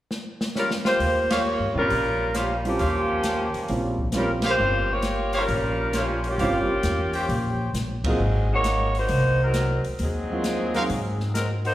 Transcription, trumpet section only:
1.30 G4 C5 C#5 F5
2.35 G4 C5 C#5 F5
2.79 G4 C5 C#5 F5
4.44 G4 C5 C#5 F5
5.34 G4 C5 C#5 F5
5.93 G4 C5 C#5 F5
6.39 G4 C5 C#5 F5
7.13 G4 C5 C#5 G5
10.74 F#4 A#4 C5 F5

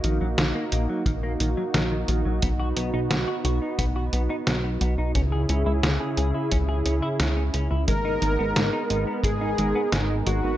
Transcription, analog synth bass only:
0.04 A#1
0.21 A#1
0.38 A#1
0.72 A#1
1.06 A#1
1.40 A#1
1.74 A#1
2.08 A#1
2.25 A#1
2.43 B1
2.77 B1
2.94 B1
3.11 B1
3.45 B1
3.79 B1
4.13 B1
4.47 B1
4.81 B1
4.98 B1
5.15 C#2
5.49 C#2
5.66 C#2
5.83 C#2
6.17 C#2
6.52 C#2
6.86 C#2
7.20 C#2
7.54 C#2
7.71 C#2
7.88 G#1
8.22 G#1
8.39 G#1
8.56 G#1
8.90 G#1
9.24 G#1
9.58 G#1
9.93 G#1
10.27 G#1
10.44 G#1

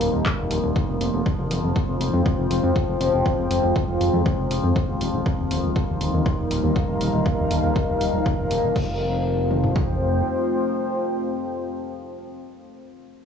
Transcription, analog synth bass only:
0.01 D#1
0.14 D#1
0.39 D#1
0.51 D#1
0.64 D#1
0.89 F1
1.01 F1
1.14 F1
1.39 F1
1.51 F1
1.64 F1
1.89 F1
2.01 F1
2.14 F2
2.39 F1
2.51 F1
2.64 F2
2.89 F1
3.01 F1
3.14 F1
3.39 F1
3.51 F1
3.64 F1
3.89 F1
4.01 F1
4.14 F2
4.39 F1
4.51 F1
4.64 F2
4.89 D#1
5.01 D#1
5.14 D#1
5.39 D#1
5.51 D#1
5.64 D#1
5.89 D#1
6.01 D#1
6.14 D#2
6.39 D#1
6.51 D#1
6.64 D#2
6.89 D#1
7.01 D#1
7.14 D#1
7.39 D#1
7.51 D#1
7.64 D#1
7.89 D#1
8.01 D#1
8.14 D#1
8.39 D#1
8.51 D#1
8.64 D#1
8.76 F1

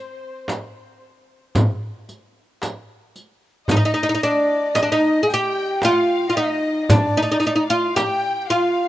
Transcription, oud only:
Already playing: C4
3.71 D#4
3.77 D#4
3.85 D#4
3.94 D#4
4.03 D#4
4.09 D#4
4.15 D#4
4.23 D4
4.75 D#4
4.83 D4
4.92 D#4
5.23 G#4
5.34 G4
5.85 F4
6.30 F4
6.37 D#4
6.90 D4
7.17 D#4
7.22 D#4
7.32 D#4
7.40 D#4
7.47 D#4
7.56 D#4
7.70 F4
7.96 G4
8.50 F4

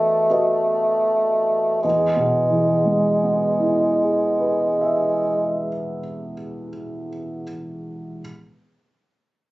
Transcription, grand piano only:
Already playing: F#4 B4 D#5
0.30 F#4 B4 D#5
1.84 E2
2.16 B2
2.51 E3
2.85 G#3
3.23 B3
3.60 E4
4.00 G#4
4.40 B4
4.81 E5

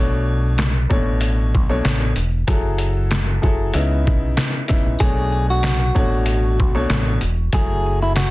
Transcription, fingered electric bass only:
Already playing: B1
0.91 A1
1.55 B1
1.85 A1
2.17 E1
2.48 F#1
3.43 F#1
3.74 C#2
4.07 B1
4.86 A#1
5.00 B1
5.96 A1
6.60 B1
6.90 A1
7.22 E1
7.53 F#1

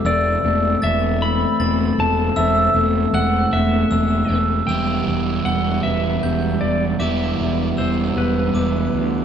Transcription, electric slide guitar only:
0.06 D5
0.84 E5
1.22 B5
2.00 A5
2.36 E5
3.14 F#5
3.53 E5
4.67 G5
5.45 F#5
5.83 E5
6.61 D5
7.00 E5
7.78 C5
8.18 B4

